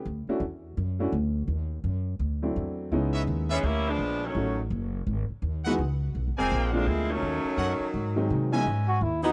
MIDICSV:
0, 0, Header, 1, 8, 480
1, 0, Start_track
1, 0, Tempo, 358423
1, 67, Time_signature, 4, 2, 24, 8
1, 12487, End_track
2, 0, Start_track
2, 0, Title_t, "Trumpet section"
2, 0, Program_c, 0, 61
2, 4190, Note_on_c, 0, 71, 79
2, 4193, Note_on_c, 0, 73, 72
2, 4194, Note_on_c, 0, 75, 68
2, 4195, Note_on_c, 0, 76, 89
2, 4315, Note_off_c, 0, 71, 0
2, 4317, Note_off_c, 0, 73, 0
2, 4318, Note_off_c, 0, 75, 0
2, 4318, Note_off_c, 0, 76, 0
2, 4674, Note_on_c, 0, 71, 86
2, 4678, Note_on_c, 0, 74, 88
2, 4679, Note_on_c, 0, 68, 91
2, 4681, Note_on_c, 0, 76, 99
2, 4797, Note_off_c, 0, 71, 0
2, 4799, Note_off_c, 0, 74, 0
2, 4800, Note_off_c, 0, 68, 0
2, 4802, Note_off_c, 0, 76, 0
2, 7565, Note_on_c, 0, 76, 75
2, 7566, Note_on_c, 0, 78, 102
2, 7568, Note_on_c, 0, 75, 81
2, 7573, Note_on_c, 0, 71, 96
2, 7685, Note_off_c, 0, 76, 0
2, 7686, Note_off_c, 0, 75, 0
2, 7686, Note_off_c, 0, 78, 0
2, 7690, Note_off_c, 0, 71, 0
2, 8533, Note_on_c, 0, 74, 73
2, 8534, Note_on_c, 0, 70, 89
2, 8534, Note_on_c, 0, 77, 79
2, 8538, Note_on_c, 0, 80, 102
2, 9152, Note_off_c, 0, 70, 0
2, 9152, Note_off_c, 0, 74, 0
2, 9152, Note_off_c, 0, 77, 0
2, 9154, Note_off_c, 0, 80, 0
2, 10145, Note_on_c, 0, 69, 77
2, 10147, Note_on_c, 0, 73, 69
2, 10147, Note_on_c, 0, 75, 68
2, 10149, Note_on_c, 0, 78, 83
2, 10349, Note_off_c, 0, 69, 0
2, 10350, Note_off_c, 0, 73, 0
2, 10350, Note_off_c, 0, 75, 0
2, 10351, Note_off_c, 0, 78, 0
2, 11411, Note_on_c, 0, 75, 72
2, 11413, Note_on_c, 0, 76, 81
2, 11413, Note_on_c, 0, 80, 96
2, 11415, Note_on_c, 0, 61, 86
2, 11417, Note_on_c, 0, 71, 80
2, 12031, Note_off_c, 0, 75, 0
2, 12031, Note_off_c, 0, 80, 0
2, 12032, Note_off_c, 0, 61, 0
2, 12032, Note_off_c, 0, 76, 0
2, 12034, Note_off_c, 0, 71, 0
2, 12487, End_track
3, 0, Start_track
3, 0, Title_t, "Trumpet"
3, 0, Program_c, 1, 56
3, 11895, Note_on_c, 1, 66, 80
3, 12091, Note_on_c, 1, 64, 70
3, 12111, Note_off_c, 1, 66, 0
3, 12366, Note_off_c, 1, 64, 0
3, 12374, Note_on_c, 1, 63, 93
3, 12487, Note_off_c, 1, 63, 0
3, 12487, End_track
4, 0, Start_track
4, 0, Title_t, "Saxophone section"
4, 0, Program_c, 2, 65
4, 12357, Note_on_c, 2, 52, 89
4, 12357, Note_on_c, 2, 63, 80
4, 12358, Note_on_c, 2, 66, 88
4, 12359, Note_on_c, 2, 59, 84
4, 12480, Note_off_c, 2, 52, 0
4, 12480, Note_off_c, 2, 63, 0
4, 12481, Note_off_c, 2, 59, 0
4, 12481, Note_off_c, 2, 66, 0
4, 12487, End_track
5, 0, Start_track
5, 0, Title_t, "Upright piano"
5, 0, Program_c, 3, 0
5, 387, Note_on_c, 3, 61, 57
5, 389, Note_on_c, 3, 57, 67
5, 390, Note_on_c, 3, 64, 61
5, 393, Note_on_c, 3, 62, 59
5, 393, Note_on_c, 3, 66, 77
5, 537, Note_off_c, 3, 61, 0
5, 538, Note_off_c, 3, 57, 0
5, 539, Note_off_c, 3, 64, 0
5, 540, Note_off_c, 3, 62, 0
5, 540, Note_off_c, 3, 66, 0
5, 1329, Note_on_c, 3, 57, 64
5, 1341, Note_on_c, 3, 62, 59
5, 1341, Note_on_c, 3, 64, 63
5, 1343, Note_on_c, 3, 61, 61
5, 1351, Note_on_c, 3, 66, 67
5, 1487, Note_off_c, 3, 57, 0
5, 1493, Note_off_c, 3, 62, 0
5, 1493, Note_off_c, 3, 64, 0
5, 1494, Note_off_c, 3, 61, 0
5, 1498, Note_off_c, 3, 66, 0
5, 3245, Note_on_c, 3, 54, 55
5, 3248, Note_on_c, 3, 57, 45
5, 3253, Note_on_c, 3, 64, 60
5, 3254, Note_on_c, 3, 60, 50
5, 3257, Note_on_c, 3, 62, 54
5, 3866, Note_off_c, 3, 54, 0
5, 3867, Note_off_c, 3, 57, 0
5, 3870, Note_off_c, 3, 64, 0
5, 3871, Note_off_c, 3, 60, 0
5, 3872, Note_off_c, 3, 62, 0
5, 3906, Note_on_c, 3, 64, 63
5, 3907, Note_on_c, 3, 56, 59
5, 3914, Note_on_c, 3, 59, 60
5, 3917, Note_on_c, 3, 61, 61
5, 3917, Note_on_c, 3, 63, 70
5, 4863, Note_off_c, 3, 64, 0
5, 4864, Note_off_c, 3, 56, 0
5, 4867, Note_off_c, 3, 59, 0
5, 4869, Note_off_c, 3, 61, 0
5, 4869, Note_off_c, 3, 63, 0
5, 5833, Note_on_c, 3, 54, 57
5, 5841, Note_on_c, 3, 57, 52
5, 5841, Note_on_c, 3, 63, 52
5, 5842, Note_on_c, 3, 61, 49
5, 5851, Note_on_c, 3, 66, 65
5, 6099, Note_off_c, 3, 54, 0
5, 6103, Note_off_c, 3, 57, 0
5, 6103, Note_off_c, 3, 63, 0
5, 6104, Note_off_c, 3, 61, 0
5, 6109, Note_off_c, 3, 66, 0
5, 7583, Note_on_c, 3, 52, 69
5, 7585, Note_on_c, 3, 56, 75
5, 7587, Note_on_c, 3, 59, 71
5, 7591, Note_on_c, 3, 63, 72
5, 7597, Note_on_c, 3, 66, 89
5, 7734, Note_off_c, 3, 52, 0
5, 7735, Note_off_c, 3, 56, 0
5, 7736, Note_off_c, 3, 59, 0
5, 7738, Note_off_c, 3, 63, 0
5, 7741, Note_off_c, 3, 66, 0
5, 9012, Note_on_c, 3, 50, 60
5, 9017, Note_on_c, 3, 56, 57
5, 9022, Note_on_c, 3, 58, 59
5, 9028, Note_on_c, 3, 60, 58
5, 9034, Note_on_c, 3, 65, 67
5, 9631, Note_off_c, 3, 50, 0
5, 9634, Note_off_c, 3, 56, 0
5, 9636, Note_off_c, 3, 58, 0
5, 9639, Note_off_c, 3, 60, 0
5, 9642, Note_off_c, 3, 65, 0
5, 10929, Note_on_c, 3, 51, 60
5, 10934, Note_on_c, 3, 56, 61
5, 10936, Note_on_c, 3, 54, 61
5, 10940, Note_on_c, 3, 60, 57
5, 10942, Note_on_c, 3, 63, 73
5, 11378, Note_off_c, 3, 51, 0
5, 11380, Note_off_c, 3, 56, 0
5, 11381, Note_off_c, 3, 54, 0
5, 11383, Note_off_c, 3, 60, 0
5, 11384, Note_off_c, 3, 63, 0
5, 11412, Note_on_c, 3, 37, 64
5, 11418, Note_on_c, 3, 54, 61
5, 11420, Note_on_c, 3, 52, 57
5, 11424, Note_on_c, 3, 56, 61
5, 11426, Note_on_c, 3, 63, 70
5, 11428, Note_on_c, 3, 59, 58
5, 11569, Note_off_c, 3, 37, 0
5, 11572, Note_off_c, 3, 54, 0
5, 11573, Note_off_c, 3, 52, 0
5, 11575, Note_off_c, 3, 56, 0
5, 11576, Note_off_c, 3, 63, 0
5, 11577, Note_off_c, 3, 59, 0
5, 12487, End_track
6, 0, Start_track
6, 0, Title_t, "Saxophone section"
6, 0, Program_c, 4, 65
6, 4709, Note_on_c, 4, 61, 88
6, 4710, Note_on_c, 4, 56, 77
6, 4710, Note_on_c, 4, 59, 76
6, 4714, Note_on_c, 4, 52, 77
6, 4862, Note_off_c, 4, 61, 0
6, 4863, Note_off_c, 4, 56, 0
6, 4863, Note_off_c, 4, 59, 0
6, 4865, Note_off_c, 4, 52, 0
6, 4876, Note_on_c, 4, 64, 101
6, 4879, Note_on_c, 4, 55, 85
6, 4880, Note_on_c, 4, 61, 89
6, 4883, Note_on_c, 4, 58, 82
6, 5171, Note_off_c, 4, 64, 0
6, 5172, Note_off_c, 4, 55, 0
6, 5173, Note_off_c, 4, 61, 0
6, 5174, Note_off_c, 4, 58, 0
6, 5209, Note_on_c, 4, 62, 97
6, 5210, Note_on_c, 4, 59, 79
6, 5212, Note_on_c, 4, 53, 76
6, 5218, Note_on_c, 4, 56, 78
6, 5667, Note_off_c, 4, 59, 0
6, 5667, Note_off_c, 4, 62, 0
6, 5668, Note_off_c, 4, 53, 0
6, 5671, Note_off_c, 4, 56, 0
6, 5688, Note_on_c, 4, 51, 62
6, 5689, Note_on_c, 4, 54, 65
6, 5693, Note_on_c, 4, 61, 77
6, 5696, Note_on_c, 4, 57, 63
6, 6146, Note_off_c, 4, 51, 0
6, 6147, Note_off_c, 4, 54, 0
6, 6148, Note_off_c, 4, 61, 0
6, 6150, Note_off_c, 4, 57, 0
6, 8539, Note_on_c, 4, 56, 77
6, 8541, Note_on_c, 4, 58, 87
6, 8545, Note_on_c, 4, 53, 80
6, 8545, Note_on_c, 4, 60, 97
6, 8980, Note_off_c, 4, 56, 0
6, 8980, Note_off_c, 4, 58, 0
6, 8983, Note_off_c, 4, 53, 0
6, 8983, Note_off_c, 4, 60, 0
6, 9015, Note_on_c, 4, 58, 77
6, 9016, Note_on_c, 4, 53, 79
6, 9018, Note_on_c, 4, 56, 83
6, 9020, Note_on_c, 4, 62, 94
6, 9181, Note_off_c, 4, 56, 0
6, 9188, Note_off_c, 4, 58, 0
6, 9189, Note_off_c, 4, 53, 0
6, 9191, Note_off_c, 4, 62, 0
6, 9197, Note_on_c, 4, 56, 82
6, 9200, Note_on_c, 4, 64, 92
6, 9203, Note_on_c, 4, 53, 82
6, 9204, Note_on_c, 4, 60, 84
6, 9493, Note_off_c, 4, 56, 0
6, 9494, Note_off_c, 4, 64, 0
6, 9496, Note_off_c, 4, 53, 0
6, 9496, Note_off_c, 4, 60, 0
6, 9513, Note_on_c, 4, 54, 78
6, 9513, Note_on_c, 4, 61, 89
6, 9514, Note_on_c, 4, 51, 84
6, 9519, Note_on_c, 4, 57, 69
6, 10637, Note_off_c, 4, 61, 0
6, 10640, Note_off_c, 4, 57, 0
6, 11420, Note_off_c, 4, 51, 0
6, 11420, Note_off_c, 4, 54, 0
6, 12487, End_track
7, 0, Start_track
7, 0, Title_t, "Upright bass"
7, 0, Program_c, 5, 32
7, 73, Note_on_c, 5, 38, 87
7, 351, Note_off_c, 5, 38, 0
7, 536, Note_on_c, 5, 40, 85
7, 1005, Note_off_c, 5, 40, 0
7, 1033, Note_on_c, 5, 42, 84
7, 1494, Note_off_c, 5, 42, 0
7, 1505, Note_on_c, 5, 38, 94
7, 1969, Note_off_c, 5, 38, 0
7, 1976, Note_on_c, 5, 39, 80
7, 2444, Note_off_c, 5, 39, 0
7, 2461, Note_on_c, 5, 42, 88
7, 2927, Note_off_c, 5, 42, 0
7, 2938, Note_on_c, 5, 38, 85
7, 3405, Note_off_c, 5, 38, 0
7, 3429, Note_on_c, 5, 40, 84
7, 3891, Note_off_c, 5, 40, 0
7, 3905, Note_on_c, 5, 37, 79
7, 4368, Note_off_c, 5, 37, 0
7, 4383, Note_on_c, 5, 39, 91
7, 4848, Note_off_c, 5, 39, 0
7, 4865, Note_on_c, 5, 38, 91
7, 5328, Note_off_c, 5, 38, 0
7, 5339, Note_on_c, 5, 34, 84
7, 5806, Note_off_c, 5, 34, 0
7, 5823, Note_on_c, 5, 33, 86
7, 6288, Note_off_c, 5, 33, 0
7, 6300, Note_on_c, 5, 30, 93
7, 6766, Note_off_c, 5, 30, 0
7, 6784, Note_on_c, 5, 32, 88
7, 7065, Note_off_c, 5, 32, 0
7, 7258, Note_on_c, 5, 39, 87
7, 7726, Note_off_c, 5, 39, 0
7, 7745, Note_on_c, 5, 37, 89
7, 8210, Note_off_c, 5, 37, 0
7, 8234, Note_on_c, 5, 35, 82
7, 8397, Note_on_c, 5, 32, 56
7, 8417, Note_off_c, 5, 35, 0
7, 8550, Note_off_c, 5, 32, 0
7, 8564, Note_on_c, 5, 28, 66
7, 8703, Note_off_c, 5, 28, 0
7, 8726, Note_on_c, 5, 34, 97
7, 9181, Note_off_c, 5, 34, 0
7, 9199, Note_on_c, 5, 38, 85
7, 9657, Note_off_c, 5, 38, 0
7, 9670, Note_on_c, 5, 39, 81
7, 9949, Note_off_c, 5, 39, 0
7, 10141, Note_on_c, 5, 42, 88
7, 10424, Note_off_c, 5, 42, 0
7, 10631, Note_on_c, 5, 44, 87
7, 11093, Note_off_c, 5, 44, 0
7, 11119, Note_on_c, 5, 48, 89
7, 11577, Note_off_c, 5, 48, 0
7, 11593, Note_on_c, 5, 44, 82
7, 12054, Note_off_c, 5, 44, 0
7, 12067, Note_on_c, 5, 39, 85
7, 12487, Note_off_c, 5, 39, 0
7, 12487, End_track
8, 0, Start_track
8, 0, Title_t, "Muted upright bass strokes"
8, 365, Note_on_c, 9, 29, 39
8, 499, Note_off_c, 9, 29, 0
8, 7092, Note_on_c, 9, 29, 37
8, 7226, Note_off_c, 9, 29, 0
8, 9970, Note_on_c, 9, 29, 39
8, 10104, Note_off_c, 9, 29, 0
8, 10441, Note_on_c, 9, 29, 40
8, 10575, Note_off_c, 9, 29, 0
8, 12487, End_track
0, 0, End_of_file